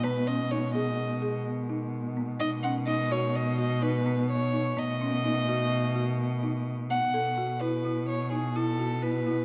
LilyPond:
<<
  \new Staff \with { instrumentName = "Violin" } { \time 5/4 \key b \mixolydian \tempo 4 = 127 b'8 dis''8 cis''8 dis''4. r2 | dis''8 fis''8 dis''8 cis''8 dis''8 dis''8 b'4 cis''4 | dis''1 r8 fis''8~ | fis''4 b'4 cis''8 gis'8 a'4 b'4 | }
  \new Staff \with { instrumentName = "Marimba" } { \time 5/4 \key b \mixolydian b8 cis'8 dis'8 gis'4 gis'4 dis'4 b8 | dis'8 cis'8 dis'8 fis'4 fis'8 dis'8 b4 dis'8 | b8 cis'8 dis'8 fis'4 fis'4 dis'4 b8 | a'8 fis'8 e'8 e'4 dis'8 e'8 fis'8 e'8 e'8 | }
  \new Staff \with { instrumentName = "Woodwind section" } { \clef bass \time 5/4 \key b \mixolydian <dis gis b>1~ <dis gis b>4~ | <dis gis b>1~ <dis gis b>4 | <dis a b>1~ <dis a b>4 | r1 r4 | }
  \new Staff \with { instrumentName = "Cello" } { \clef bass \time 5/4 \key b \mixolydian b,1~ b,4 | b,1~ b,4 | b,1~ b,4 | b,1~ b,4 | }
>>